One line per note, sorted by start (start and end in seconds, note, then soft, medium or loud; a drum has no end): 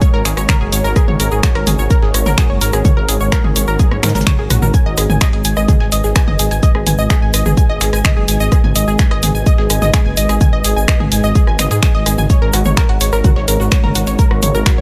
0.00 4.70 G#3 medium
0.00 4.70 F#4 medium
0.00 4.70 A#4 medium
0.00 4.70 C#5 medium
0.00 0.13 C#5 medium
0.00 0.13 C#6 medium
0.00 kick loud
0.00 shaker soft
0.00 shaker medium
0.13 0.23 G#1 medium
0.13 0.25 A#4 loud
0.13 0.25 A#5 medium
0.25 0.35 G#1 loud
0.25 0.37 G#4 medium
0.25 0.37 G#5 medium
0.25 finger snap medium
0.25 open hi-hat loud
0.25 shaker medium
0.25 shaker loud
0.37 0.46 G#1 medium
0.37 0.48 C#5 medium
0.37 0.48 C#6 medium
0.37 cross-stick medium
0.37 closed hi-hat soft
0.37 shaker soft
0.49 0.60 A#4 loud
0.49 0.60 A#5 medium
0.49 finger snap loud
0.49 kick loud
0.49 snare loud
0.49 mid tom medium
0.49 shaker medium
0.49 shaker soft
0.61 0.70 F#1 medium
0.61 0.72 G#4 medium
0.61 0.72 G#5 medium
0.72 0.82 G#1 loud
0.72 0.84 C#5 medium
0.72 0.84 C#6 medium
0.72 open hi-hat medium
0.72 shaker medium
0.72 shaker loud
0.84 0.94 G#1 medium
0.84 0.95 A#4 loud
0.84 0.95 A#5 medium
0.84 shaker soft
0.96 1.07 G#4 medium
0.96 1.07 G#5 medium
0.96 kick loud
0.96 cross-stick medium
0.96 shaker medium
0.96 shaker soft
1.08 1.17 G#1 medium
1.08 1.19 C#5 medium
1.08 1.19 C#6 medium
1.08 mid tom medium
1.20 1.29 G#1 medium
1.20 1.31 A#4 loud
1.20 1.31 A#5 medium
1.20 open hi-hat loud
1.20 shaker medium
1.31 1.41 G#1 medium
1.31 1.43 G#4 medium
1.31 1.43 G#5 medium
1.31 shaker soft
1.43 1.55 C#5 medium
1.43 1.55 C#6 medium
1.43 finger snap loud
1.43 kick loud
1.43 snare loud
1.43 shaker soft
1.43 shaker medium
1.55 1.64 G#1 medium
1.55 1.66 A#4 loud
1.55 1.66 A#5 medium
1.55 cross-stick medium
1.55 closed hi-hat soft
1.67 1.76 G#1 loud
1.67 1.78 G#4 medium
1.67 1.78 G#5 medium
1.67 open hi-hat medium
1.67 mid tom medium
1.67 shaker medium
1.78 1.88 G#1 medium
1.78 1.90 C#5 medium
1.78 1.90 C#6 medium
1.78 shaker medium
1.90 2.02 A#4 loud
1.90 2.02 A#5 medium
1.90 kick loud
1.90 shaker soft
1.90 shaker medium
2.02 2.12 G#1 medium
2.02 2.14 G#4 medium
2.02 2.14 G#5 medium
2.02 snare medium
2.14 2.24 G#1 loud
2.14 2.26 C#5 medium
2.14 2.26 C#6 medium
2.14 cross-stick medium
2.14 open hi-hat loud
2.14 shaker medium
2.14 shaker loud
2.26 2.35 G#1 medium
2.26 2.37 A#4 loud
2.26 2.37 A#5 medium
2.26 snare soft
2.26 mid tom medium
2.26 shaker medium
2.38 2.49 G#4 medium
2.38 2.49 G#5 medium
2.38 finger snap loud
2.38 kick loud
2.38 snare loud
2.38 shaker medium
2.38 shaker soft
2.50 2.59 F#1 medium
2.50 2.61 C#5 medium
2.50 2.61 C#6 medium
2.61 2.71 G#1 loud
2.61 2.73 A#4 loud
2.61 2.73 A#5 medium
2.61 open hi-hat medium
2.61 shaker medium
2.73 2.83 G#1 medium
2.73 2.84 G#4 medium
2.73 2.84 G#5 medium
2.73 cross-stick medium
2.73 closed hi-hat soft
2.73 shaker soft
2.85 2.96 C#5 medium
2.85 2.96 C#6 medium
2.85 kick loud
2.85 mid tom loud
2.85 shaker soft
2.85 shaker medium
2.97 3.06 G#1 medium
2.97 3.08 A#4 loud
2.97 3.08 A#5 medium
3.09 3.18 G#1 loud
3.09 3.20 G#4 medium
3.09 3.20 G#5 medium
3.09 open hi-hat loud
3.09 shaker medium
3.20 3.30 G#1 medium
3.20 3.32 C#5 medium
3.20 3.32 C#6 medium
3.20 shaker soft
3.32 3.44 A#4 loud
3.32 3.44 A#5 medium
3.32 finger snap loud
3.32 kick loud
3.32 cross-stick medium
3.32 snare loud
3.32 shaker medium
3.32 shaker soft
3.44 3.53 G#1 medium
3.44 3.55 G#4 medium
3.44 3.55 G#5 medium
3.44 mid tom loud
3.56 3.65 G#1 loud
3.56 3.67 C#5 medium
3.56 3.67 C#6 medium
3.56 open hi-hat medium
3.56 shaker medium
3.67 3.77 G#1 medium
3.67 3.79 A#4 loud
3.67 3.79 A#5 medium
3.67 shaker soft
3.79 3.91 G#4 medium
3.79 3.91 G#5 medium
3.79 kick loud
3.79 high tom medium
3.79 shaker soft
3.79 shaker medium
3.91 4.01 G#1 medium
3.91 4.03 C#5 medium
3.91 4.03 C#6 medium
3.91 cross-stick medium
3.91 high tom medium
4.03 4.13 G#2 loud
4.03 4.12 A#4 medium
4.03 4.12 A#5 medium
4.03 finger snap medium
4.03 snare medium
4.03 open hi-hat loud
4.03 mid tom medium
4.03 high tom medium
4.03 shaker medium
4.09 snare medium
4.09 shaker medium
4.15 4.24 G#1 medium
4.15 4.20 A#4 medium
4.15 4.20 A#5 soft
4.15 snare medium
4.15 mid tom medium
4.15 shaker medium
4.21 snare medium
4.21 shaker medium
4.27 4.32 C#5 medium
4.27 4.32 C#6 medium
4.27 finger snap loud
4.27 kick loud
4.27 mid tom medium
4.27 shaker soft
4.27 shaker medium
4.39 4.48 G#1 medium
4.39 4.44 G#4 medium
4.39 4.44 G#5 medium
4.50 4.60 A#1 loud
4.50 4.59 F#4 medium
4.50 4.59 F#5 medium
4.50 cross-stick medium
4.50 mid tom medium
4.50 open hi-hat medium
4.50 shaker medium
4.62 4.72 G#1 medium
4.62 4.68 A#4 medium
4.62 4.68 A#5 medium
4.62 mid tom medium
4.62 mid tom loud
4.62 shaker medium
4.74 14.81 G#3 medium
4.74 12.26 G#4 medium
4.74 12.26 B4 medium
4.74 12.26 D#5 medium
4.74 4.85 G#5 medium
4.74 4.85 G#6 medium
4.74 kick loud
4.74 shaker medium
4.74 shaker soft
4.86 4.95 G#1 medium
4.86 4.97 D#5 loud
4.86 4.97 D#6 medium
4.97 5.07 G#1 loud
4.97 5.03 G#4 medium
4.97 5.03 G#5 medium
4.97 cross-stick medium
4.97 open hi-hat loud
4.97 shaker medium
5.10 5.19 G#1 medium
5.10 5.21 G#5 medium
5.10 5.21 G#6 medium
5.10 mid tom loud
5.10 shaker medium
5.21 5.33 D#5 loud
5.21 5.33 D#6 medium
5.21 finger snap loud
5.21 kick loud
5.21 snare loud
5.21 shaker soft
5.21 shaker medium
5.33 5.42 G#1 medium
5.33 5.38 G#4 medium
5.33 5.38 G#5 medium
5.33 closed hi-hat soft
5.44 5.54 G#1 loud
5.44 5.56 G#5 medium
5.44 5.56 G#6 medium
5.44 open hi-hat loud
5.44 shaker medium
5.56 5.66 G#1 medium
5.56 5.68 D#5 loud
5.56 5.68 D#6 medium
5.56 cross-stick soft
5.56 shaker medium
5.68 5.74 G#4 medium
5.68 5.74 G#5 medium
5.68 kick loud
5.68 mid tom loud
5.68 shaker medium
5.68 shaker soft
5.80 5.90 G#1 medium
5.80 5.92 G#5 medium
5.80 5.92 G#6 medium
5.80 snare medium
5.92 6.02 G#1 loud
5.92 6.03 D#5 loud
5.92 6.03 D#6 medium
5.92 open hi-hat loud
5.92 shaker medium
6.04 6.13 G#1 medium
6.04 6.09 G#4 medium
6.04 6.09 G#5 medium
6.04 snare soft
6.04 shaker medium
6.15 6.27 G#5 medium
6.15 6.27 G#6 medium
6.15 finger snap loud
6.15 kick loud
6.15 cross-stick medium
6.15 snare loud
6.15 shaker soft
6.15 shaker medium
6.28 6.37 F#1 medium
6.28 6.39 D#5 loud
6.28 6.39 D#6 medium
6.28 mid tom loud
6.39 6.49 G#1 loud
6.39 6.45 G#4 medium
6.39 6.45 G#5 medium
6.39 open hi-hat medium
6.39 shaker loud
6.39 shaker medium
6.51 6.60 G#1 medium
6.51 6.62 G#5 medium
6.51 6.62 G#6 medium
6.51 closed hi-hat soft
6.51 shaker medium
6.63 6.74 D#5 loud
6.63 6.74 D#6 medium
6.63 kick loud
6.63 shaker medium
6.63 shaker soft
6.75 6.84 G#1 medium
6.75 6.80 G#4 medium
6.75 6.80 G#5 medium
6.75 cross-stick medium
6.87 6.96 G#1 loud
6.87 6.98 G#5 medium
6.87 6.98 G#6 medium
6.87 open hi-hat loud
6.87 mid tom medium
6.87 shaker medium
6.98 7.08 G#1 medium
6.98 7.10 D#5 loud
6.98 7.10 D#6 medium
6.98 shaker soft
7.10 7.16 G#4 medium
7.10 7.16 G#5 medium
7.10 finger snap loud
7.10 kick loud
7.10 snare loud
7.10 shaker medium
7.10 shaker soft
7.22 7.31 G#1 medium
7.22 7.33 G#5 medium
7.22 7.33 G#6 medium
7.34 7.43 G#1 loud
7.34 7.45 D#5 loud
7.34 7.45 D#6 medium
7.34 cross-stick medium
7.34 open hi-hat loud
7.34 shaker loud
7.34 shaker medium
7.46 7.55 G#1 medium
7.46 7.51 G#4 medium
7.46 7.51 G#5 medium
7.46 mid tom medium
7.46 shaker medium
7.57 7.69 G#5 medium
7.57 7.69 G#6 medium
7.57 kick loud
7.57 shaker medium
7.57 shaker soft
7.69 7.79 G#1 medium
7.69 7.81 D#5 loud
7.69 7.81 D#6 medium
7.81 7.91 G#1 loud
7.81 7.86 G#4 medium
7.81 7.86 G#5 medium
7.81 finger snap medium
7.81 open hi-hat loud
7.81 shaker medium
7.93 8.02 G#1 medium
7.93 8.04 G#5 medium
7.93 8.04 G#6 medium
7.93 cross-stick soft
7.93 closed hi-hat soft
7.93 shaker medium
8.04 8.16 D#5 loud
8.04 8.16 D#6 medium
8.04 finger snap loud
8.04 kick loud
8.04 snare loud
8.04 mid tom medium
8.04 shaker soft
8.04 shaker medium
8.17 8.26 F#1 medium
8.17 8.22 G#4 medium
8.17 8.22 G#5 medium
8.28 8.38 G#1 loud
8.28 8.40 G#5 medium
8.28 8.40 G#6 medium
8.28 open hi-hat medium
8.28 shaker medium
8.28 shaker loud
8.40 8.49 G#1 medium
8.40 8.51 D#5 loud
8.40 8.51 D#6 medium
8.40 shaker medium
8.52 8.57 G#4 medium
8.52 8.57 G#5 medium
8.52 kick loud
8.52 cross-stick medium
8.52 shaker medium
8.52 shaker soft
8.64 8.73 G#1 medium
8.64 8.75 G#5 medium
8.64 8.75 G#6 medium
8.64 mid tom medium
8.75 8.85 G#1 medium
8.75 8.87 D#5 loud
8.75 8.87 D#6 medium
8.75 open hi-hat loud
8.75 shaker medium
8.88 8.97 G#1 medium
8.88 8.93 G#4 medium
8.88 8.93 G#5 medium
8.88 shaker medium
8.98 9.11 G#5 medium
8.98 9.11 G#6 medium
8.98 finger snap loud
8.98 kick loud
8.98 snare loud
8.98 shaker soft
8.98 shaker medium
9.11 9.20 G#1 medium
9.11 9.22 D#5 loud
9.11 9.22 D#6 medium
9.11 cross-stick soft
9.11 closed hi-hat soft
9.23 9.32 G#1 loud
9.23 9.28 G#4 medium
9.23 9.28 G#5 medium
9.23 open hi-hat loud
9.23 mid tom medium
9.23 shaker loud
9.23 shaker medium
9.35 9.44 G#1 medium
9.35 9.46 G#5 medium
9.35 9.46 G#6 medium
9.35 shaker medium
9.46 9.58 D#5 loud
9.46 9.58 D#6 medium
9.46 kick loud
9.46 shaker soft
9.46 shaker medium
9.58 9.68 G#1 medium
9.58 9.64 G#4 medium
9.58 9.64 G#5 medium
9.58 snare medium
9.70 9.80 G#1 loud
9.70 9.81 G#5 medium
9.70 9.81 G#6 medium
9.70 cross-stick soft
9.70 open hi-hat loud
9.70 shaker loud
9.70 shaker medium
9.82 9.91 G#1 medium
9.82 9.93 D#5 loud
9.82 9.93 D#6 medium
9.82 snare soft
9.82 mid tom medium
9.82 shaker medium
9.93 9.99 G#4 medium
9.93 9.99 G#5 medium
9.93 finger snap loud
9.93 kick loud
9.93 snare loud
9.93 shaker soft
9.93 shaker medium
10.06 10.15 F#1 medium
10.06 10.17 G#5 medium
10.06 10.17 G#6 medium
10.17 10.27 G#1 loud
10.17 10.29 D#5 loud
10.17 10.29 D#6 medium
10.17 open hi-hat medium
10.17 shaker loud
10.17 shaker medium
10.29 10.39 G#1 medium
10.29 10.34 G#4 medium
10.29 10.34 G#5 medium
10.29 cross-stick soft
10.29 closed hi-hat soft
10.29 shaker medium
10.41 10.52 G#5 medium
10.41 10.52 G#6 medium
10.41 kick loud
10.41 mid tom medium
10.41 shaker soft
10.41 shaker medium
10.53 10.62 G#1 medium
10.53 10.64 D#5 loud
10.53 10.64 D#6 medium
10.64 10.74 G#1 loud
10.64 10.70 G#4 medium
10.64 10.70 G#5 medium
10.64 open hi-hat loud
10.64 shaker loud
10.64 shaker medium
10.77 10.86 G#1 medium
10.77 10.88 G#5 medium
10.77 10.88 G#6 medium
10.77 shaker medium
10.88 11.00 D#5 loud
10.88 11.00 D#6 medium
10.88 finger snap loud
10.88 kick loud
10.88 cross-stick medium
10.88 snare loud
10.88 shaker soft
10.88 shaker medium
11.00 11.09 G#1 medium
11.00 11.05 G#4 medium
11.00 11.05 G#5 medium
11.00 mid tom medium
11.12 11.21 G#1 loud
11.12 11.23 G#5 medium
11.12 11.23 G#6 medium
11.12 open hi-hat medium
11.12 shaker medium
11.12 shaker loud
11.23 11.33 G#1 medium
11.23 11.35 D#5 loud
11.23 11.35 D#6 medium
11.23 shaker soft
11.35 11.41 G#4 medium
11.35 11.41 G#5 medium
11.35 kick loud
11.35 shaker medium
11.35 shaker soft
11.47 11.57 G#1 medium
11.47 11.59 G#5 medium
11.47 11.59 G#6 medium
11.47 cross-stick soft
11.59 11.69 G#1 loud
11.59 11.70 D#5 loud
11.59 11.70 D#6 medium
11.59 finger snap medium
11.59 open hi-hat loud
11.59 mid tom medium
11.59 shaker medium
11.71 11.80 G#2 medium
11.71 11.76 G#4 medium
11.71 11.76 G#5 medium
11.71 closed hi-hat soft
11.71 shaker medium
11.82 11.94 G#5 medium
11.82 11.94 G#6 medium
11.82 finger snap loud
11.82 kick loud
11.82 snare loud
11.82 shaker medium
11.82 shaker soft
11.95 12.04 G#1 medium
11.95 12.06 D#5 loud
11.95 12.06 D#6 medium
12.06 12.16 G#1 loud
12.06 12.12 G#4 medium
12.06 12.12 G#5 medium
12.06 cross-stick soft
12.06 open hi-hat medium
12.06 shaker medium
12.06 shaker loud
12.18 12.27 G#1 medium
12.18 12.29 G#5 medium
12.18 12.29 G#6 medium
12.18 mid tom medium
12.18 shaker medium
12.30 14.81 F#4 medium
12.30 14.81 A#4 medium
12.30 14.81 C#5 medium
12.30 12.41 C#5 medium
12.30 12.41 C#6 medium
12.30 kick loud
12.30 shaker medium
12.30 shaker soft
12.42 12.51 G#1 medium
12.42 12.53 A#4 loud
12.42 12.53 A#5 medium
12.53 12.63 G#1 loud
12.53 12.59 F#4 medium
12.53 12.59 F#5 medium
12.53 cross-stick medium
12.53 open hi-hat loud
12.53 shaker medium
12.65 12.75 G#1 medium
12.65 12.77 C#5 medium
12.65 12.77 C#6 medium
12.65 mid tom medium
12.65 shaker soft
12.77 12.89 A#4 loud
12.77 12.89 A#5 medium
12.77 finger snap loud
12.77 kick loud
12.77 snare loud
12.77 shaker soft
12.77 shaker medium
12.89 12.98 G#1 medium
12.89 12.94 F#4 medium
12.89 12.94 F#5 medium
12.89 closed hi-hat soft
13.01 13.10 G#1 loud
13.01 13.12 C#5 medium
13.01 13.12 C#6 medium
13.01 open hi-hat medium
13.01 shaker medium
13.12 13.22 G#1 medium
13.12 13.24 A#4 loud
13.12 13.24 A#5 medium
13.12 cross-stick medium
13.12 shaker soft
13.24 13.30 F#4 medium
13.24 13.30 F#5 medium
13.24 kick loud
13.24 mid tom medium
13.24 shaker medium
13.24 shaker soft
13.36 13.46 G#1 medium
13.36 13.47 C#5 medium
13.36 13.47 C#6 medium
13.36 snare medium
13.48 13.58 G#1 loud
13.48 13.59 A#4 loud
13.48 13.59 A#5 medium
13.48 open hi-hat loud
13.48 shaker medium
13.48 shaker loud
13.60 13.69 G#1 medium
13.60 13.65 F#4 medium
13.60 13.65 F#5 soft
13.60 snare soft
13.60 shaker soft
13.71 13.83 C#5 medium
13.71 13.83 C#6 medium
13.71 finger snap loud
13.71 kick loud
13.71 cross-stick medium
13.71 snare loud
13.71 shaker soft
13.71 shaker medium
13.84 13.93 F#1 medium
13.84 13.95 A#4 loud
13.84 13.95 A#5 medium
13.84 mid tom medium
13.95 14.05 G#1 loud
13.95 14.01 F#4 medium
13.95 14.01 F#5 medium
13.95 open hi-hat medium
13.95 shaker medium
14.07 14.17 G#1 medium
14.07 14.18 C#5 medium
14.07 14.18 C#6 medium
14.07 closed hi-hat soft
14.07 shaker medium
14.19 14.30 A#4 loud
14.19 14.30 A#5 medium
14.19 kick loud
14.19 shaker soft
14.19 shaker medium
14.31 14.40 G#1 medium
14.31 14.36 F#4 medium
14.31 14.36 F#5 medium
14.31 cross-stick medium
14.42 14.52 G#1 medium
14.42 14.54 C#5 medium
14.42 14.54 C#6 medium
14.42 open hi-hat loud
14.42 mid tom loud
14.42 shaker medium
14.54 14.64 G#1 medium
14.54 14.66 A#4 loud
14.54 14.66 A#5 medium
14.54 shaker soft
14.66 14.71 F#4 medium
14.66 14.71 F#5 medium
14.66 finger snap loud
14.66 kick loud
14.66 snare loud
14.66 shaker medium
14.66 shaker soft